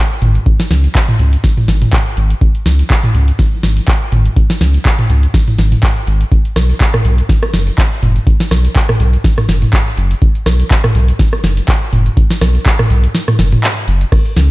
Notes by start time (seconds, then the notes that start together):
0.22 G#1, mid tom, open hi-hat
0.35 closed hi-hat
0.46 kick, closed hi-hat
0.60 snare, closed hi-hat
0.71 C#2, snare, open hi-hat
0.84 closed hi-hat
0.95 kick, clap, closed hi-hat
1.08 closed hi-hat, mid tom
1.19 C#2, open hi-hat
1.33 closed hi-hat
1.44 kick, snare, closed hi-hat
1.57 closed hi-hat, mid tom
1.68 G#1, snare, open hi-hat
1.82 closed hi-hat, mid tom
1.93 kick, clap, closed hi-hat
2.06 closed hi-hat
2.17 G#1, open hi-hat
2.30 closed hi-hat
2.41 kick, closed hi-hat
2.55 closed hi-hat
2.66 C#2, snare, open hi-hat
2.79 closed hi-hat
2.90 kick, clap, closed hi-hat
3.04 closed hi-hat, mid tom
3.15 C#2, open hi-hat
3.28 closed hi-hat
3.39 kick, snare, closed hi-hat
3.63 G#1, snare, open hi-hat
3.77 closed hi-hat
3.88 kick, clap, closed hi-hat
4.12 G#1, mid tom, open hi-hat
4.26 closed hi-hat
4.37 kick, closed hi-hat
4.50 snare, closed hi-hat
4.61 C#2, snare, open hi-hat
4.74 closed hi-hat
4.85 kick, clap, closed hi-hat
4.99 closed hi-hat, mid tom
5.10 C#2, open hi-hat
5.23 closed hi-hat
5.34 kick, snare, closed hi-hat
5.48 closed hi-hat, mid tom
5.58 G#1, snare, open hi-hat
5.72 closed hi-hat, mid tom
5.83 kick, clap, closed hi-hat
5.96 closed hi-hat
6.07 G#1, open hi-hat
6.21 closed hi-hat
6.32 kick, closed hi-hat, shaker
6.45 closed hi-hat, shaker
6.56 B1, cross-stick, snare, open hi-hat, shaker
6.70 closed hi-hat, shaker
6.80 kick, clap, closed hi-hat, shaker
6.94 cross-stick, closed hi-hat, mid tom, shaker
7.05 B1, open hi-hat, shaker
7.18 closed hi-hat, shaker
7.29 kick, snare, closed hi-hat, shaker
7.43 cross-stick, shaker
7.54 F#1, snare, open hi-hat, shaker
7.67 closed hi-hat, shaker
7.78 kick, clap, closed hi-hat, shaker
7.92 shaker
8.02 F#1, mid tom, open hi-hat, shaker
8.16 closed hi-hat, shaker
8.27 kick, closed hi-hat, shaker
8.40 snare, closed hi-hat, shaker
8.51 B1, cross-stick, snare, open hi-hat, shaker
8.65 closed hi-hat, shaker
8.76 kick, clap, closed hi-hat, shaker
8.89 cross-stick, closed hi-hat, mid tom, shaker
9.00 B1, open hi-hat, shaker
9.13 closed hi-hat, shaker
9.24 kick, snare, closed hi-hat, shaker
9.38 cross-stick, closed hi-hat, mid tom, shaker
9.49 F#1, snare, open hi-hat, shaker
9.62 closed hi-hat, mid tom, shaker
9.73 kick, clap, closed hi-hat, shaker
9.87 closed hi-hat, shaker
9.97 F#1, open hi-hat, shaker
10.11 closed hi-hat, shaker
10.22 kick, closed hi-hat, shaker
10.35 closed hi-hat, shaker
10.46 B1, cross-stick, snare, open hi-hat, shaker
10.60 closed hi-hat, shaker
10.71 kick, clap, closed hi-hat, shaker
10.84 cross-stick, closed hi-hat, mid tom, shaker
10.95 B1, open hi-hat, shaker
11.08 closed hi-hat, shaker
11.19 kick, snare, closed hi-hat, shaker
11.33 cross-stick, shaker
11.44 F#1, snare, open hi-hat, shaker
11.57 closed hi-hat, shaker
11.68 kick, clap, closed hi-hat, shaker
11.82 shaker
11.93 F#1, mid tom, open hi-hat, shaker
12.06 closed hi-hat, shaker
12.17 kick, closed hi-hat, shaker
12.30 snare, closed hi-hat, shaker
12.41 B1, cross-stick, snare, open hi-hat, shaker
12.55 open hi-hat, shaker
12.66 kick, clap, closed hi-hat, shaker
12.79 cross-stick, closed hi-hat, mid tom, shaker
12.90 B1, open hi-hat, shaker
13.04 closed hi-hat, shaker
13.15 snare, closed hi-hat, shaker
13.28 cross-stick, closed hi-hat, mid tom, shaker
13.39 F#1, snare, open hi-hat, shaker
13.52 closed hi-hat, mid tom, shaker
13.63 clap, closed hi-hat, shaker
13.77 closed hi-hat, shaker
13.88 F#1, open hi-hat, shaker
14.01 closed hi-hat, shaker
14.12 kick, cross-stick, closed hi-hat, crash, shaker
14.26 closed hi-hat, shaker
14.37 C#2, snare, open hi-hat, shaker